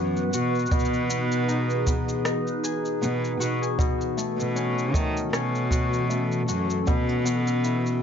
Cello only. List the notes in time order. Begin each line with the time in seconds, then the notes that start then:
Already playing: F#2
0.33 B2
0.71 B2
3.02 B2
3.40 B2
4.39 B2
4.94 D#3
5.33 B2
6.48 F#2
6.88 B2